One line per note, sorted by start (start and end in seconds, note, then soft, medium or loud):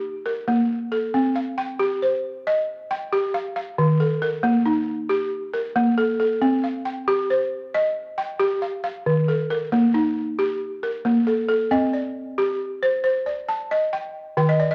0.00 0.48 G4 medium
0.26 0.92 A#4 medium
0.48 0.92 A#3 medium
0.92 1.36 A4 medium
1.14 1.58 C4 medium
1.36 2.02 F5 medium
1.58 2.24 G5 medium
1.79 2.24 G4 medium
2.02 2.68 C5 medium
2.47 2.91 D#5 medium
2.91 3.56 G5 medium
3.13 3.56 G4 medium
3.34 3.55 F5 medium
3.56 4.00 F5 medium
3.78 4.22 D#3 medium
4.00 4.66 A4 medium
4.22 4.88 A#4 medium
4.43 4.88 A#3 medium
4.66 5.32 D#4 medium
5.09 5.54 G4 medium
5.54 6.20 A#4 medium
5.76 6.20 A#3 medium
5.98 6.18 A4 medium
6.20 6.64 A4 medium
6.42 6.86 C4 medium
6.64 7.30 F5 medium
6.85 7.52 G5 medium
7.08 7.52 G4 medium
7.30 7.96 C5 medium
7.74 8.41 D#5 medium
8.18 8.84 G5 medium
8.40 8.84 G4 medium
8.62 8.83 F5 medium
8.84 9.28 F5 medium
9.06 9.51 D#3 medium
9.28 9.95 A4 medium
9.50 10.17 A#4 medium
9.72 10.17 A#3 medium
9.94 10.61 D#4 medium
10.39 10.83 G4 medium
10.83 11.50 A#4 medium
11.05 11.49 A#3 medium
11.27 11.47 A4 medium
11.48 11.93 A4 medium
11.71 12.16 C4 medium
11.71 12.38 D#5 medium
11.93 12.60 D5 medium
12.38 12.82 G4 medium
12.83 13.03 C5 medium
13.04 13.48 C5 medium
13.26 13.93 D5 medium
13.49 14.15 A5 medium
13.71 14.15 D#5 medium
13.93 14.36 G5 medium
14.37 14.75 D#3 medium
14.37 14.58 G5 medium
14.49 14.69 D#5 medium
14.60 14.75 D5 medium
14.71 14.75 D#5 medium